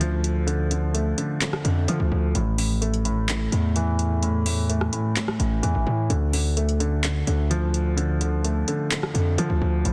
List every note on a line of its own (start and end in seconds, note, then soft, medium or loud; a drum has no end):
0.00 1.14 D2 loud
0.00 0.47 D3 medium
0.00 1.18 F3 loud
0.00 0.24 A3 medium
0.00 closed hi-hat medium
0.24 closed hi-hat medium
0.47 0.70 D3 medium
0.47 closed hi-hat medium
0.71 1.17 D3 medium
0.71 closed hi-hat medium
0.94 2.11 A3 medium
0.94 closed hi-hat medium
1.18 1.40 D3 medium
1.18 closed hi-hat medium
1.41 1.63 D3 medium
1.41 clap loud
1.41 closed hi-hat medium
1.53 cross-stick loud
1.64 1.87 F2 loud
1.64 2.35 D3 medium
1.64 closed hi-hat medium
1.88 1.99 D3 loud
1.88 2.35 F3 medium
1.88 closed hi-hat medium
2.00 2.11 D2 loud
2.12 2.34 D2 loud
2.35 3.48 A1 loud
2.35 2.57 A2 medium
2.35 closed hi-hat medium
2.58 3.04 A2 medium
2.58 open hi-hat medium
2.81 3.99 A3 medium
2.81 closed hi-hat medium
2.94 closed hi-hat soft
3.05 3.27 A2 medium
3.05 closed hi-hat medium
3.28 3.51 A2 medium
3.28 clap loud
3.28 closed hi-hat medium
3.52 4.89 E2 loud
3.52 4.21 A2 medium
3.52 closed hi-hat medium
3.76 4.93 E3 medium
3.76 closed hi-hat medium
3.99 closed hi-hat medium
4.23 4.45 A2 medium
4.23 closed hi-hat medium
4.46 4.91 A2 medium
4.46 open hi-hat medium
4.69 5.87 A3 medium
4.69 closed hi-hat medium
4.81 cross-stick medium
4.93 5.14 A2 medium
4.93 closed hi-hat medium
5.16 5.38 A2 medium
5.16 clap loud
5.16 closed hi-hat medium
5.28 cross-stick loud
5.39 5.62 A1 loud
5.39 6.10 A2 medium
5.39 closed hi-hat medium
5.63 5.74 E2 loud
5.63 6.10 E3 medium
5.63 closed hi-hat medium
5.75 5.86 A1 loud
5.87 6.09 A2 loud
6.10 7.23 D2 loud
6.10 6.32 D3 medium
6.10 closed hi-hat medium
6.33 6.79 D3 medium
6.33 open hi-hat medium
6.57 7.74 A3 medium
6.57 closed hi-hat medium
6.69 closed hi-hat soft
6.80 7.02 D3 medium
6.80 closed hi-hat medium
7.04 7.26 D3 medium
7.04 clap loud
7.04 closed hi-hat medium
7.27 8.64 D2 loud
7.27 7.95 D3 medium
7.27 closed hi-hat medium
7.50 8.68 F3 loud
7.50 closed hi-hat medium
7.74 closed hi-hat medium
7.97 8.19 D3 medium
7.97 closed hi-hat medium
8.21 8.66 D3 medium
8.21 closed hi-hat medium
8.44 9.61 A3 medium
8.44 closed hi-hat medium
8.68 8.89 D3 medium
8.68 closed hi-hat medium
8.91 9.13 D3 medium
8.91 clap loud
8.91 closed hi-hat medium
9.03 cross-stick loud
9.14 9.37 F2 loud
9.14 9.85 D3 medium
9.14 closed hi-hat medium
9.38 9.49 D3 loud
9.38 9.85 F3 loud
9.38 closed hi-hat medium
9.50 9.61 D2 loud
9.62 9.84 D2 loud
9.85 9.93 A1 loud
9.85 9.93 A2 medium
9.85 closed hi-hat medium